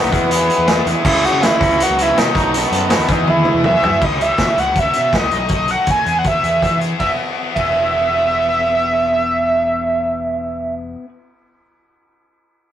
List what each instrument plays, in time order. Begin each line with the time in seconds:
Already playing: overdriven electric guitar B2 F#3 A3 D#4 F#4, analog synth lead B3
0.03 picked electric bass B1, closed hi-hat
0.10 picked electric bass E2, overdriven electric guitar E3 G#3 B3 E4 G#4, kick, closed hi-hat
0.30 overdriven electric guitar E3 G#3 B3 E4 G#4, analog synth lead B3, closed hi-hat
0.50 closed hi-hat
0.58 picked electric bass E2
0.66 overdriven electric guitar E3 G#3 B3 E4 G#4, snare, closed hi-hat
0.85 picked electric bass E2, overdriven electric guitar E3 G#3 B3 E4 G#4, closed hi-hat
1.03 picked electric bass C#2, overdriven electric guitar C#3 E3 G#3 C#4 E4 G#4, analog synth lead E4, kick, crash
1.24 analog synth lead F#4, closed hi-hat
1.33 picked electric bass C#3
1.40 overdriven electric guitar C#3 E3 G#3 C#4 E4 G#4, analog synth lead E4, snare, closed hi-hat
1.59 picked electric bass C#2, overdriven electric guitar C#3 F#3 B3 C#4 F#4, kick, closed hi-hat
1.70 closed hi-hat
1.76 overdriven electric guitar C#3 F#3 B3 C#4 F#4, closed hi-hat
1.83 analog synth lead F#4
1.90 picked electric bass C#2
1.98 analog synth lead E4, closed hi-hat
2.15 picked electric bass B2, overdriven electric guitar C#3 F#3 B3 C#4 F#4, analog synth lead D#4, snare, closed hi-hat
2.33 picked electric bass B1, overdriven electric guitar B2 D#3 F#3 A3 B3 D#4 F#4 A4, kick, closed hi-hat
2.51 overdriven electric guitar B2 D#3 F#3 A3 B3 D#4 F#4 A4, closed hi-hat
2.57 analog synth lead B3
2.62 closed hi-hat
2.71 picked electric bass F#2, closed hi-hat
2.88 overdriven electric guitar B2 D#3 F#3 A3 B3 D#4 F#4 A4, snare, closed hi-hat
2.99 picked electric bass D#2, closed hi-hat
3.07 picked electric bass E2, overdriven electric guitar E3 G#3 B3 E4 G#4, kick, closed hi-hat
3.12 analog synth lead D#4
3.26 overdriven electric guitar E3 G#3 B3 E4 G#4, analog synth lead E4, high tom
3.45 mid tom
3.54 picked electric bass E2
3.64 overdriven electric guitar E3 G#3 B3 E4 G#4, analog synth lead E5, mid tom
3.82 picked electric bass D2, overdriven electric guitar E3 G#3 B3 E4 G#4, floor tom
4.01 picked electric bass C#2, overdriven electric guitar E3 G#3 C#4, analog synth lead D#5, kick, crash
4.13 analog synth lead D#5
4.20 overdriven electric guitar E3 G#3 C#4, analog synth lead E5, closed hi-hat
4.38 picked electric bass B2, overdriven electric guitar E3 G#3 C#4, kick, snare, closed hi-hat
4.57 picked electric bass C#2, overdriven electric guitar F#3 B3 C#4, analog synth lead F#5, closed hi-hat
4.76 overdriven electric guitar F#3 B3 C#4, analog synth lead E5, kick, closed hi-hat
4.93 picked electric bass B2, overdriven electric guitar F#3 B3 C#4, closed hi-hat
5.13 overdriven electric guitar F#3 B3 C#4, analog synth lead D#5, kick, snare, closed hi-hat
5.22 picked electric bass C#2
5.31 picked electric bass B1, overdriven electric guitar F#3 A3 D#4, closed hi-hat
5.48 overdriven electric guitar F#3 A3 D#4, kick, closed hi-hat
5.53 analog synth lead D#5
5.68 overdriven electric guitar F#3 A3 D#4, analog synth lead F#5, closed hi-hat
5.86 picked electric bass D#2, overdriven electric guitar F#3 A3 D#4, analog synth lead G#5, kick, closed hi-hat
6.06 picked electric bass E2, overdriven electric guitar B3 E4 G#4, closed hi-hat
6.18 analog synth lead F#5
6.24 overdriven electric guitar B3 E4 G#4, analog synth lead E5, kick, closed hi-hat
6.43 picked electric bass E2, overdriven electric guitar B3 E4 G#4, closed hi-hat
6.62 overdriven electric guitar B3 E4 G#4, kick, closed hi-hat
6.70 picked electric bass E3
6.80 overdriven electric guitar B3 E4 G#4, closed hi-hat
6.99 picked electric bass E1, overdriven electric guitar B3 E4, analog synth lead E5, kick, ride
7.03 overdriven electric guitar G#4
7.55 picked electric bass E1, overdriven electric guitar B3 E4, analog synth lead E5, kick, ride
7.59 overdriven electric guitar G#4